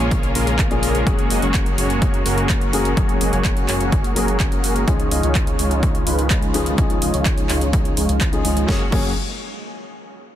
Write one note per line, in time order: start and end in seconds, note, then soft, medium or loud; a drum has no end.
0.00 0.33 A#1 medium
0.00 0.70 A#2 medium
0.00 4.84 C#3 medium
0.00 0.71 F3 medium
0.00 1.03 F3 medium
0.00 4.84 G#3 medium
0.00 0.32 A#3 medium
0.00 0.71 A#3 medium
0.00 4.84 A#3 medium
0.00 0.32 C#4 medium
0.00 0.71 C#4 medium
0.00 0.32 F4 medium
0.00 1.03 F4 medium
0.00 0.32 G#4 medium
0.00 0.72 G#4 medium
0.00 0.32 C#5 medium
0.11 kick loud
0.11 closed hi-hat medium
0.23 closed hi-hat soft
0.35 1.04 A#1 medium
0.35 1.04 A#3 medium
0.35 1.04 C#4 medium
0.35 1.04 F4 medium
0.35 1.04 G#4 medium
0.35 1.04 A#4 loud
0.35 open hi-hat loud
0.47 closed hi-hat soft
0.59 kick loud
0.59 clap loud
0.59 closed hi-hat medium
0.70 1.04 A#2 medium
0.70 1.04 F3 medium
0.70 1.04 A#3 medium
0.70 1.04 C#4 medium
0.70 1.04 G#4 medium
0.70 closed hi-hat soft
0.83 open hi-hat loud
0.95 closed hi-hat soft
1.05 1.28 F#1 medium
1.05 2.70 F#3 medium
1.05 4.84 F#3 medium
1.05 2.70 A#3 medium
1.05 1.28 A#3 medium
1.05 1.28 C#4 medium
1.05 2.71 C#4 medium
1.05 4.84 F#4 medium
1.05 1.28 F#4 medium
1.05 1.28 G#4 medium
1.05 2.71 G#4 medium
1.05 1.28 C#5 medium
1.05 kick loud
1.05 closed hi-hat medium
1.19 closed hi-hat soft
1.30 1.40 F#1 loud
1.30 1.41 A#3 medium
1.30 1.41 C#4 medium
1.30 1.41 F#4 medium
1.30 1.41 G#4 medium
1.30 1.41 D#5 medium
1.30 open hi-hat loud
1.42 1.76 F#1 loud
1.42 1.75 A#3 medium
1.42 1.75 C#4 medium
1.42 1.75 F#4 medium
1.42 1.75 G#4 medium
1.42 1.75 C#5 medium
1.42 closed hi-hat soft
1.54 kick loud
1.54 clap loud
1.54 closed hi-hat medium
1.66 closed hi-hat soft
1.78 2.23 F#1 loud
1.78 2.23 A#3 medium
1.78 2.23 C#4 medium
1.78 2.23 F#4 medium
1.78 2.23 G#4 medium
1.78 2.23 C#5 medium
1.78 open hi-hat loud
1.90 closed hi-hat soft
2.02 kick loud
2.02 closed hi-hat medium
2.14 closed hi-hat soft
2.26 2.95 F#1 medium
2.26 2.94 A#3 loud
2.26 2.94 C#4 loud
2.26 2.94 F#4 medium
2.26 2.94 G#4 medium
2.26 2.94 A#4 loud
2.26 open hi-hat loud
2.38 closed hi-hat soft
2.49 kick loud
2.49 clap loud
2.49 closed hi-hat medium
2.61 closed hi-hat soft
2.73 2.94 F#3 medium
2.73 2.94 A#3 medium
2.73 2.94 C#4 medium
2.73 2.95 G#4 loud
2.73 open hi-hat loud
2.85 closed hi-hat soft
2.96 3.19 F#1 medium
2.96 4.13 F#3 medium
2.96 4.13 A#3 medium
2.96 3.18 A#3 medium
2.96 3.18 C#4 medium
2.96 4.14 C#4 medium
2.96 3.18 F#4 medium
2.96 3.18 G#4 medium
2.96 4.14 G#4 medium
2.96 3.18 C#5 medium
2.96 kick loud
2.96 closed hi-hat medium
3.09 closed hi-hat soft
3.21 3.30 F#1 medium
3.21 3.31 A#3 medium
3.21 3.31 C#4 medium
3.21 3.31 F#4 medium
3.21 3.31 G#4 medium
3.21 3.31 D#5 medium
3.21 open hi-hat loud
3.33 3.66 F#1 loud
3.33 3.66 A#3 medium
3.33 3.66 C#4 medium
3.33 3.66 F#4 medium
3.33 3.66 G#4 medium
3.33 3.66 C#5 medium
3.33 closed hi-hat soft
3.45 kick loud
3.45 clap loud
3.45 closed hi-hat medium
3.57 closed hi-hat soft
3.68 4.14 F#1 loud
3.68 4.13 A#3 medium
3.68 4.13 C#4 medium
3.68 4.13 F#4 medium
3.68 4.13 G#4 medium
3.68 4.13 C#5 medium
3.68 clap medium
3.68 open hi-hat loud
3.81 closed hi-hat soft
3.92 kick loud
3.92 closed hi-hat medium
4.04 closed hi-hat soft
4.15 4.85 F#1 medium
4.15 4.84 F#3 medium
4.15 4.85 A#3 medium
4.15 4.85 A#3 loud
4.15 4.85 C#4 medium
4.15 4.85 F#4 medium
4.15 4.85 G#4 medium
4.15 4.85 A#4 loud
4.15 open hi-hat loud
4.28 closed hi-hat soft
4.40 kick loud
4.40 clap loud
4.40 closed hi-hat medium
4.52 closed hi-hat soft
4.64 open hi-hat loud
4.76 closed hi-hat soft
4.86 5.09 C#2 medium
4.86 8.65 D#3 medium
4.86 6.51 F3 medium
4.86 8.65 F3 medium
4.86 8.65 G#3 medium
4.86 5.09 G#3 medium
4.86 6.51 C#4 medium
4.86 8.65 C#4 medium
4.86 5.09 C#4 medium
4.86 5.09 D#4 medium
4.86 6.52 D#4 medium
4.86 5.09 F4 medium
4.86 8.65 F4 medium
4.86 6.52 G#4 medium
4.86 5.09 C#5 medium
4.86 kick loud
4.86 closed hi-hat medium
5.00 closed hi-hat soft
5.11 5.21 C#2 loud
5.11 5.22 G#3 medium
5.11 5.22 C#4 medium
5.11 5.22 D#4 medium
5.11 5.22 F4 medium
5.11 5.22 D#5 medium
5.11 open hi-hat loud
5.23 5.57 C#2 medium
5.23 5.56 G#3 medium
5.23 5.56 C#4 medium
5.23 5.56 D#4 medium
5.23 5.56 F4 medium
5.23 5.56 C#5 medium
5.23 closed hi-hat soft
5.35 kick loud
5.35 clap loud
5.35 closed hi-hat medium
5.47 closed hi-hat soft
5.59 6.04 C#2 loud
5.59 6.04 G#3 medium
5.59 6.04 C#4 medium
5.59 6.04 D#4 medium
5.59 6.04 F4 medium
5.59 6.04 C#5 medium
5.59 open hi-hat loud
5.71 closed hi-hat soft
5.83 kick loud
5.83 closed hi-hat medium
5.95 closed hi-hat soft
6.07 6.76 C#2 medium
6.07 6.75 G#3 loud
6.07 6.75 C#4 medium
6.07 6.75 D#4 medium
6.07 6.75 F4 medium
6.07 6.75 B4 loud
6.07 open hi-hat loud
6.19 closed hi-hat soft
6.30 kick loud
6.30 clap loud
6.30 closed hi-hat medium
6.42 closed hi-hat soft
6.54 6.75 F3 medium
6.54 6.75 C#4 medium
6.54 6.75 D#4 medium
6.54 6.76 G#4 medium
6.54 open hi-hat loud
6.66 closed hi-hat soft
6.77 7.00 C#2 loud
6.77 7.94 F3 medium
6.77 6.99 G#3 medium
6.77 7.94 C#4 medium
6.77 6.99 C#4 medium
6.77 6.99 D#4 medium
6.77 7.95 D#4 medium
6.77 6.99 F4 medium
6.77 7.95 G#4 medium
6.77 6.99 C#5 medium
6.77 kick loud
6.77 closed hi-hat medium
6.90 closed hi-hat soft
7.02 7.11 C#2 loud
7.02 7.12 G#3 medium
7.02 7.12 C#4 medium
7.02 7.12 D#4 medium
7.02 7.12 F4 medium
7.02 7.12 D#5 medium
7.02 open hi-hat loud
7.14 7.47 C#2 medium
7.14 7.47 G#3 medium
7.14 7.47 C#4 medium
7.14 7.47 D#4 medium
7.14 7.47 F4 medium
7.14 7.47 C#5 medium
7.14 closed hi-hat soft
7.25 kick loud
7.25 clap loud
7.25 closed hi-hat medium
7.38 closed hi-hat soft
7.49 7.95 C#2 loud
7.49 7.94 G#3 medium
7.49 7.94 C#4 medium
7.49 7.94 D#4 medium
7.49 7.94 F4 medium
7.49 7.94 C#5 medium
7.49 clap medium
7.49 open hi-hat loud
7.61 closed hi-hat soft
7.73 kick loud
7.73 closed hi-hat medium
7.85 closed hi-hat soft
7.97 8.07 C#2 loud
7.97 8.07 G#3 medium
7.97 8.07 C#4 medium
7.97 8.07 D#4 medium
7.97 8.07 F4 medium
7.97 8.07 C#5 loud
7.97 open hi-hat loud
8.09 8.42 C#2 loud
8.09 8.28 G#3 medium
8.09 8.28 C#4 medium
8.09 8.28 D#4 medium
8.09 8.28 F4 medium
8.09 8.28 F5 medium
8.09 closed hi-hat soft
8.21 kick loud
8.21 clap loud
8.21 closed hi-hat medium
8.32 8.65 F3 medium
8.32 8.66 C#4 medium
8.32 8.66 D#4 medium
8.32 8.66 G#4 medium
8.32 closed hi-hat soft
8.45 8.66 C#2 loud
8.45 8.66 G#3 loud
8.45 8.66 C#4 medium
8.45 8.66 D#4 medium
8.45 8.66 F4 medium
8.45 8.66 D#5 loud
8.45 open hi-hat loud
8.57 closed hi-hat soft
8.67 8.82 F#1 medium
8.67 8.91 A#2 medium
8.67 8.81 F#3 medium
8.67 8.91 F#3 medium
8.67 8.91 G#3 medium
8.67 8.82 A#3 medium
8.67 8.91 C#4 medium
8.67 8.82 C#4 medium
8.67 8.91 F#4 medium
8.67 8.82 F#4 medium
8.67 8.82 G#4 medium
8.67 8.83 G#4 medium
8.67 8.82 C#5 medium
8.67 kick loud
8.67 snare medium
8.91 9.15 F#1 loud
8.91 9.09 F#3 medium
8.91 9.10 A#3 medium
8.91 9.10 C#4 medium
8.91 9.10 F#4 medium
8.91 9.10 G#4 medium
8.91 9.11 G#4 loud
8.91 9.10 C#5 medium
8.91 kick loud
8.91 crash medium